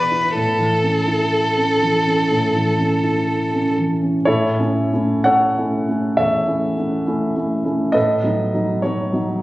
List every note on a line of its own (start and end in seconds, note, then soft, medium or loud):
0.00 0.33 E2 soft
0.00 0.39 B2 soft
0.00 0.26 B3 soft
0.00 0.35 B4 medium
0.11 0.36 E4 soft
0.35 2.27 A2 soft
0.35 3.74 A4 medium
0.59 0.99 E3 soft
0.83 1.23 C#4 soft
1.08 1.48 E4 soft
1.32 1.72 A4 soft
1.58 1.97 C#4 soft
1.81 2.21 E3 soft
2.07 2.46 C#4 soft
2.31 4.22 A2 soft
2.55 2.94 E3 soft
2.79 3.19 C#4 soft
3.03 3.43 E4 soft
3.27 3.67 A4 soft
3.54 3.93 C#4 soft
3.78 4.17 E3 soft
4.02 4.26 C#4 soft
4.25 4.58 A2 soft
4.25 4.59 E4 medium
4.25 5.22 A4 medium
4.25 5.24 C#5 medium
4.59 4.90 A3 soft
4.59 4.90 C#4 soft
4.59 4.90 E4 soft
4.93 5.23 A3 soft
4.93 5.23 C#4 soft
4.93 5.23 E4 soft
5.24 5.54 A3 soft
5.24 5.54 C#4 soft
5.24 5.55 E4 soft
5.24 6.14 A4 medium
5.24 6.14 C#5 medium
5.24 6.17 F#5 medium
5.58 5.85 A3 soft
5.58 5.85 C#4 soft
5.58 5.86 E4 soft
5.88 6.15 A3 soft
5.88 6.15 C#4 soft
5.88 6.16 E4 soft
6.17 6.47 E2 soft
6.17 7.91 A4 medium
6.17 7.91 C#5 medium
6.17 7.94 E5 medium
6.47 6.74 A3 soft
6.47 6.74 C#4 soft
6.47 6.75 E4 soft
6.77 7.04 A3 soft
6.77 7.04 C#4 soft
6.77 7.04 E4 soft
7.06 7.33 A3 soft
7.06 7.33 C#4 soft
7.06 7.33 E4 soft
7.36 7.62 A3 soft
7.36 7.62 C#4 soft
7.36 7.63 E4 soft
7.65 7.92 A3 soft
7.65 7.92 C#4 soft
7.65 7.92 E4 soft
7.92 8.23 A2 soft
7.92 8.79 A4 medium
7.92 8.79 B4 medium
7.92 8.82 D#5 medium
8.23 8.50 F#3 soft
8.23 8.51 B3 soft
8.23 8.51 D#4 soft
8.54 8.81 F#3 soft
8.54 8.81 B3 soft
8.54 8.81 D#4 soft
8.82 9.10 F#3 soft
8.82 9.10 B3 soft
8.82 9.10 D#4 soft
8.82 9.42 C#5 medium
9.13 9.39 F#3 soft
9.13 9.39 B3 soft
9.13 9.40 D#4 soft